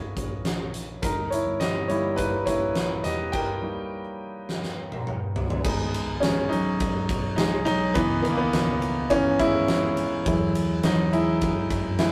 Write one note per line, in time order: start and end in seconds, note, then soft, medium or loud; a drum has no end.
0.00 0.99 G#3 soft
0.00 1.00 A#3 soft
0.00 0.71 E4 medium
0.00 1.05 F#4 medium
0.00 0.70 C#5 medium
0.00 1.05 D#5 medium
0.17 0.99 A#1 medium
0.17 kick medium
0.17 closed hi-hat medium
0.45 snare medium
0.45 closed hi-hat medium
0.74 closed hi-hat medium
1.02 1.43 G1 medium
1.02 1.31 D#4 medium
1.02 1.32 A#4 medium
1.02 kick loud
1.02 closed hi-hat medium
1.30 1.59 E4 medium
1.30 1.58 C#5 medium
1.30 closed hi-hat medium
1.46 1.87 G1 medium
1.60 1.88 G4 medium
1.60 1.90 D#5 medium
1.60 snare medium
1.60 closed hi-hat medium
1.88 2.30 G1 medium
1.88 2.28 G3 soft
1.88 2.28 A#3 soft
1.88 2.17 D#4 medium
1.88 2.17 E4 medium
1.88 2.19 C#5 medium
1.88 closed hi-hat medium
2.16 2.45 D#4 medium
2.16 2.47 B4 medium
2.16 kick medium
2.16 closed hi-hat medium
2.46 3.01 A#1 medium
2.46 3.01 E4 medium
2.46 3.06 C#5 medium
2.46 kick medium
2.46 closed hi-hat medium
2.75 snare medium
2.75 closed hi-hat medium
3.04 3.32 E1 medium
3.04 3.32 G4 medium
3.04 3.34 D#5 medium
3.04 snare soft
3.04 closed hi-hat medium
3.32 4.45 A#4 medium
3.32 4.44 G5 medium
3.32 kick medium
3.32 crash medium
3.62 4.01 G3 soft
3.62 4.01 A#3 soft
3.62 4.01 D#4 medium
4.49 snare soft
4.63 snare soft
4.92 high tom medium
5.07 mid tom medium
5.36 floor tom medium
5.50 floor tom medium
5.63 6.18 G#1 loud
5.63 6.21 G#3 medium
5.63 7.91 B3 medium
5.63 6.48 D#4 medium
5.63 kick loud
5.63 crash loud
5.94 ride medium
6.20 6.91 G#1 loud
6.20 6.49 G#3 medium
6.20 6.51 C#4 medium
6.20 snare medium
6.20 ride medium
6.49 7.34 F#3 medium
6.49 7.33 D#4 medium
6.49 ride medium
6.80 kick loud
6.80 ride medium
7.09 7.63 B1 medium
7.09 kick loud
7.09 ride medium
7.36 7.65 G#3 medium
7.36 7.64 D#4 medium
7.36 snare loud
7.36 ride medium
7.65 7.93 B1 medium
7.65 7.94 F#3 medium
7.65 7.95 D#4 loud
7.65 ride medium
7.94 8.49 C#2 loud
7.94 8.23 E3 medium
7.94 8.21 B3 loud
7.94 8.34 D#4 medium
7.94 kick loud
7.94 ride medium
8.23 8.31 D#3 medium
8.23 8.31 B3 loud
8.23 ride medium
8.30 8.37 A#3 medium
8.38 9.07 D#3 medium
8.38 9.09 B3 loud
8.53 9.22 C#2 loud
8.53 snare medium
8.53 ride medium
8.82 ride medium
9.10 9.38 E3 medium
9.10 9.37 B3 soft
9.10 9.40 C#4 loud
9.10 9.37 D#4 medium
9.10 kick medium
9.10 ride medium
9.39 10.22 G#1 medium
9.39 9.94 G#3 medium
9.39 9.93 E4 loud
9.39 kick loud
9.39 ride medium
9.68 snare loud
9.68 ride medium
9.97 ride medium
10.25 10.80 E2 loud
10.25 10.83 F#3 medium
10.25 11.12 G#3 medium
10.25 11.11 E4 medium
10.25 kick loud
10.25 ride medium
10.55 ride medium
10.83 11.52 E2 loud
10.83 11.11 F#3 medium
10.83 11.10 D#4 medium
10.83 snare medium
10.83 ride medium
11.13 11.96 G#3 medium
11.13 11.97 E4 medium
11.13 ride medium
11.41 kick loud
11.41 ride medium
11.70 12.12 F#2 medium
11.70 kick loud
11.70 ride medium
11.99 12.12 G#3 medium
11.99 12.12 E4 medium
11.99 snare medium
11.99 ride medium